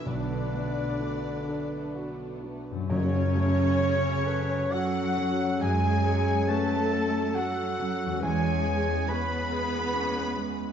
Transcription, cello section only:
X:1
M:3/4
L:1/8
Q:1/4=68
K:F#m
V:1 name="Cello section" clef=bass
B,,2 z4 | C,4 F,2 | G,2 A,2 F,2 | G,2 B,4 |]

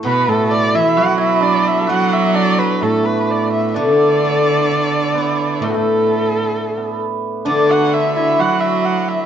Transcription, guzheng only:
X:1
M:2/4
L:1/8
Q:1/4=65
K:none
V:1 name="Guzheng" clef=bass
B,,4 | ^F,4 | D, A, D E | A,,4 |
D,4 |]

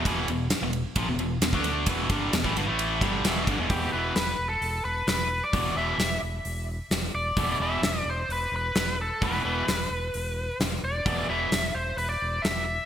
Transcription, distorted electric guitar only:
X:1
M:4/4
L:1/16
Q:1/4=130
K:Em
V:1 name="Distorted electric guitar" clef=bass
[E,,B,,E,]2 [E,,B,,]2 z [E,,B,,]2 z [^A,,=F,] [E,,B,,] [E,,B,,]2 [E,,B,,] [D,=A,D]3 | [E,,B,,E,]2 [G,,D,G,]2 [E,,B,,] [A,,E,] [G,,D,] [A,,E,A,]3 [G,,D,G,]2 [E,,B,,E,]2 [G,,D,] [E,,B,,] | [E,,B,,E,]2 [E,,B,,E,]2 z12 | [E,,B,,E,]2 [E,,B,,E,]2 z12 |
[E,,B,,E,]2 [E,,B,,E,]2 z12 | [E,,B,,E,]2 [E,,B,,E,]2 z12 | [E,,B,,E,]2 [E,,B,,E,]2 z12 |]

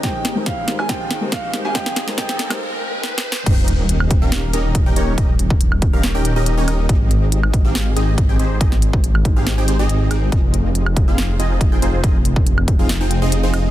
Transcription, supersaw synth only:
X:1
M:4/4
L:1/16
Q:1/4=140
K:Ebmix
V:1 name="Supersaw synth"
[CEGAe]6- [CEGAe] [CEGAf] [CEGAe]6- [CEGAe] [CEGAf] | z4 [CEGAe]4 z8 | [DEGBe]6- [DEGBe] [DEGBf]3 [DEGBe]3 [DEGBg] [DEGBd]2 | z6 z [DEGBf]2 [DEGBg]2 [DEGBe]2 [DEGBd] [DEGBe]2 |
z6 z [CEGAf]3 [CEGAe]3 [CEGAg] [CEGAc]2 | [CEGAe] z6 [CEGAf]2 [CEGAg] [CEGAc] [CEGAe]3 [CEGAg]2 | [Fe]6- [Fe] [CEFAf]3 [CEFAe]3 [CEFAg] [CEFAc]2 | [Ae] z6 [CEFAf]2 [CEFAg]2 [CEFAe]2 [CEFAc] [CEFAe]2 |]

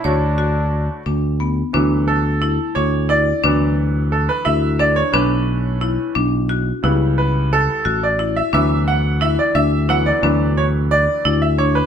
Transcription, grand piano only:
X:1
M:5/8
L:1/16
Q:1/4=88
K:D
V:1 name="Grand piano"
[A,EFc]6 z4 | z2 A4 c2 d2- | d2 z2 A B e2 d c | B6 z4 |
z2 B2 A3 d2 e | e2 f2 e d e2 f d- | d2 c2 d3 e c B |]
V:2 name="Grand piano" clef=bass
z8 z2 | [E,F,B,]2 z8 | [E,F,B,]8- [E,F,B,]2 | [D,A,C]6 z4 |
[C,G,B,]6 z4 | [E,F,B,]6 z2 [E,F,B,]2 | [E,F,B,]6 z4 |]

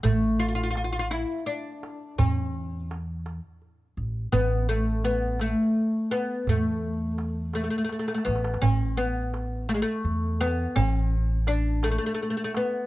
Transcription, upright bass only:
X:1
M:6/8
L:1/8
Q:3/8=56
K:none
V:1 name="Upright bass" clef=bass
A,,,4 z2 | E,,4 z A,,, | A,,,4 z2 | E,,4 z A,,, |
A,,,4 E,,2 | A,,,4 z2 |]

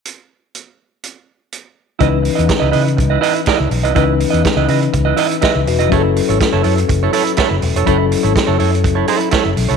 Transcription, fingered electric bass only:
X:1
M:4/4
L:1/16
Q:1/4=123
K:C#m
V:1 name="Fingered electric bass" clef=bass
z16 | C,,3 E,, z C,, C,2 C,,2 z3 C,, B,,, ^B,,, | C,,3 E,, z C,, C,2 C,,2 z3 C,, E,,, ^E,,, | F,,,3 G,,, z F,,, F,,2 F,,,2 z3 F,,, E,,, ^E,,, |
F,,,3 G,,, z F,,, F,,2 F,,,2 z3 F,,, B,,, ^B,,, |]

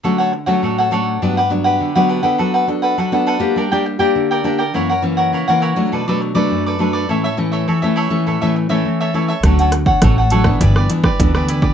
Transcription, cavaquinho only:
X:1
M:4/4
L:1/16
Q:1/4=102
K:D
V:1 name="Cavaquinho"
[DAcf] [Acf] z [Acf] [DAcf] [Acf] [DAcf]2 [DGBf] [GBf] z [GBf]2 [GBf] [DGBf] [GBf] | [DABf] [ABf] z [ABf] [DABf] [ABf] [DABf]2 [D_Bdg] [Bdg] z [Bdg]2 [Bdg] [DBdg] [Bdg] | [E^Acf] [Acf] z [Acf] [EAcf] [Acf] [EAcf]2 [D=ABd] [ABd] z [ABd]2 [ABd] [DABd] [ABd] | [EAce] [Ace] z [Ace] [EAce] [Ace] [EAce]2 [EAce] [Ace] z [Ace]2 [Ace] [EAce] [Ace] |
[DAcf] [Acf] z [Acf] [DAcf] [Acf] [DAcf]2 [EGBd] [GBd] z [GBd]2 [GBd] [EGBd] [GBd] |]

